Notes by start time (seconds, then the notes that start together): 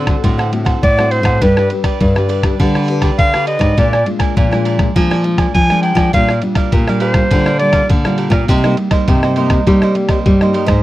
Already playing: A2 D3 D4 A4 C5 F#5
0.07 A3 C4 F#4, kick, cross-stick, ride
0.23 A2 D3 A3 C4 D4 F#4 A4 C5 F#5, kick, ride
0.38 A4 C5 F#5, cross-stick
0.52 A3 C4 F#4, muted cavaquinho stroke, ride
0.65 A4 C5 F#5, kick, cross-stick, ride
0.83 A2 D5, kick, ride
0.97 A3 C4 F#4 A4 C5 F#5, cross-stick
1.11 D4 A4 C5 F#5, ride
1.23 A2 A4 C5 F#5, kick, cross-stick, ride
1.41 G2 G3 D4 G4 B4 D5, kick, ride
1.57 G4 B4 D5, cross-stick
1.70 D4 G4 B4, muted cavaquinho stroke, ride
1.84 G4 B4 D5, kick, cross-stick, ride
2.00 G2 D3 D4 G4 B4 D5, kick, ride
2.15 D4 G4 B4 D5, cross-stick
2.29 D4 G4 B4 D5, ride
2.43 D4 G4 B4, kick, cross-stick, ride
2.59 D3 G3 D4 G4 B4 D5, kick, ride
2.75 G4 B4 D5, cross-stick
2.88 D4 G4 B4, muted cavaquinho stroke, ride
3.02 G4 B4 D5, kick, cross-stick, ride
3.19 D3 F5, kick, ride
3.33 D4 G4 B4 D5, cross-stick
3.46 D4 G4 B4 D5 D#5, ride
3.59 G#2 G4 B4 D5, kick, cross-stick, ride
3.77 A#2 G#3 D4 F4 A#4 D5 G#5, kick, ride
3.93 A#4 D5 G#5, cross-stick
4.06 G#3 D4 F4, muted cavaquinho stroke, ride
4.19 A#4 D5 G#5, kick, cross-stick, ride
4.36 A#2 F3 D4 A#4 D5 G#5, kick, ride
4.51 G#3 D4 F4 A#4 D5 G#5, cross-stick
4.65 D4 A#4 D5 G#5, ride
4.79 G#3 D4 F4, kick, cross-stick, ride
4.95 A#2 F3 G#3 D4 F4 A#4 D5 G#5, kick, ride
5.11 A#4 D5 G#5, cross-stick
5.24 G#3 D4 F4, muted cavaquinho stroke, ride
5.38 A#4 D5 G#5, kick, cross-stick, ride
5.54 F3 G#5, kick, ride
5.70 G#3 D4 F4 A#4 D5 G#5, cross-stick
5.82 D4 A#4 D5 G5 G#5, ride
5.95 F3 A#4 D5 G#5, kick, cross-stick, ride
6.13 A#2 G3 D4 F4 G4 A#4 D5 F5, kick, ride
6.29 A#4 D5 F5, cross-stick
6.42 G3 D4 F4, muted cavaquinho stroke, ride
6.55 A#4 D5 F5, kick, cross-stick, ride
6.72 A#2 G4 A#4 D5 F5, kick, ride
6.88 G3 D4 F4 A#4 D5 F5, cross-stick
7.00 G4 A#4 C5 D5 F5, ride
7.14 G3 D4 F4, kick, cross-stick, ride
7.31 A#2 D3 G3 D4 F4 G4 A#4 D5 F5, kick, ride
7.46 A#4 D5 F5, cross-stick
7.59 G3 D4 F4 D5, muted cavaquinho stroke, ride
7.73 A#4 D5 F5, kick, cross-stick, ride
7.89 A#2 D3, kick, ride
8.05 G3 D4 F4 A#4 D5 F5, cross-stick
8.18 G4 A#4 D5 F5, ride
8.30 A#2 A#4 D5 F5, kick, cross-stick, ride
8.48 C3 G3 A#3 D#4 A#4 C5 D#5, kick, ride
8.64 G3 A#3 D#4 A#4 C5 D#5, cross-stick
8.77 G3 A#3 D#4, muted cavaquinho stroke, ride
8.91 G3 A#3 D#4 A#4 C5 D#5, kick, cross-stick, ride
9.07 G2 C3 D#4 A#4 C5 D#5, kick, ride
9.23 A#4 C5 D#5, cross-stick
9.36 G3 A#3 D#4 A#4 C5 D#5, ride
9.50 kick, cross-stick, ride
9.66 C3 G3 A#3 D#4 A#4 C5 D#5, kick, ride
9.82 A#4 C5 D#5, cross-stick
9.94 G3 A#3 D#4, muted cavaquinho stroke, ride
10.09 A#4 C5 D#5, kick, cross-stick, ride
10.25 G2 G3, kick, ride
10.41 G3 A#3 D#4 A#4 C5 D#5, cross-stick
10.53 G3 A#3 D#4 A#4 C5 D#5, ride
10.66 G#2 A#4 C5 D#5, kick, cross-stick, ride